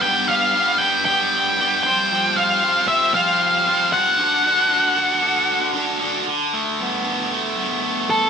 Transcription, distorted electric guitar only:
X:1
M:4/4
L:1/8
Q:1/4=116
K:Ddor
V:1 name="Distorted electric guitar"
[G,B,DB] [B,DB] [G,B,DB] [B,DB] [G,B,DB]2 [G,B,DB] [F,G,CFc] | [F,G,CFc] [CFc] [G,CFc] [CFc] [F,G,CFc]2 [G,CFc] [CFc] | [D,D^FA] [DFA] [D,DFA] [DFA] [D,DFA]2 [D,DFA] [DFA] | D, A, B, D, A, B, A, B, |]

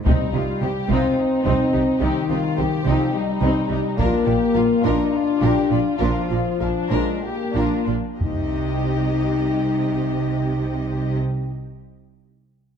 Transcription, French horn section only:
X:1
M:7/8
L:1/8
Q:1/4=100
K:Cm
V:1 name="French horn section" clef=bass
G,3 C4 | E,3 F, G,3 | B,3 D4 | F,3 A, B,3 |
E6- E- | E6- E |]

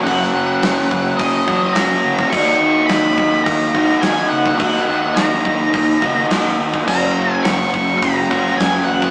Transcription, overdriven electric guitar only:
X:1
M:4/4
L:1/8
Q:1/4=106
K:F#
V:1 name="Overdriven electric guitar"
[F,A,CF]4- [F,A,CF] [F,A,CF] [F,A,CF]2 | [D,A,DF]4- [D,A,DF] [D,A,DF] [D,A,DF]2 | [D,A,DF]4- [D,A,DF] [D,A,DF] [D,A,DF]2 | [F,A,CF]4- [F,A,CF] [F,A,CF] [F,A,CF]2 |]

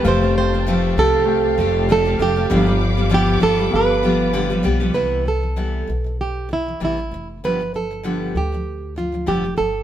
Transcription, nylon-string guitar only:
X:1
M:4/4
L:1/16
Q:"Swing 16ths" 1/4=98
K:C
V:1 name="Nylon-string guitar"
c2 c4 A6 A2 G2- | G4 G2 A2 B6 z2 | B2 A6 G2 E2 E3 z | B2 A4 G4 F2 G2 A2 |]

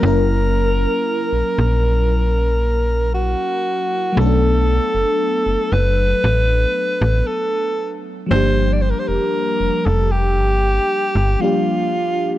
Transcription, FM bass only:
X:1
M:4/4
L:1/16
Q:1/4=58
K:F#m
V:1 name="FM bass" clef=bass
F,,,4 z ^A,,, A,,,6- A,,, z3 | [K:Glyd] B,,,3 F,,, z F,,, F,,,2 A,,,2 z A,,, z4 | G,,,3 =F,,, z F,,, F,,,2 G,,,2 z G,,, z4 |]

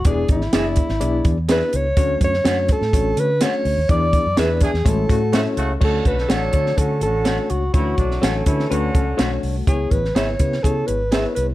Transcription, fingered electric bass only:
X:1
M:4/4
L:1/16
Q:1/4=125
K:Dlyd
V:1 name="Fingered electric bass" clef=bass
E,,,2 G,,,2 F,,,3 G,,, B,,,2 E,,4 C,,2 | D,,2 F,,2 F,,3 A,, A,,,2 D,3 z D,, ^D,, | E,,3 F,, E,,3 E,, A,,,2 A,,4 C,,2 | D,,2 B,,,2 A,,,2 D,2 D,2 A,,,4 C,,2 |
D,,2 B,,,2 A,,,2 D,2 D,,2 C,,2 B,,,2 =C,,2 | C,,2 A,,,2 G,,,2 C,2 C,2 G,,,4 =C,,2 |]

